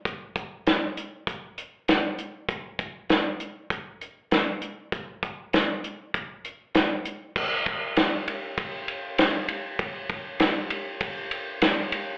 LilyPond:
\new DrumStaff \with { instrumentName = "Drums" } \drummode { \time 4/4 \tempo 4 = 98 <hh bd>8 <hh bd>8 <hh sn>8 hh8 <hh bd>8 hh8 <hh sn>8 hh8 | <hh bd>8 <hh bd>8 <hh sn>8 hh8 <hh bd>8 hh8 <hh sn>8 hh8 | <hh bd>8 <hh bd>8 <hh sn>8 hh8 <hh bd>8 hh8 <hh sn>8 hh8 | <cymc bd>8 <bd cymr>8 <cymr sn>8 cymr8 <bd cymr>8 cymr8 <cymr sn>8 cymr8 |
<bd cymr>8 <bd cymr>8 <cymr sn>8 cymr8 <bd cymr>8 cymr8 <cymr sn>8 cymr8 | }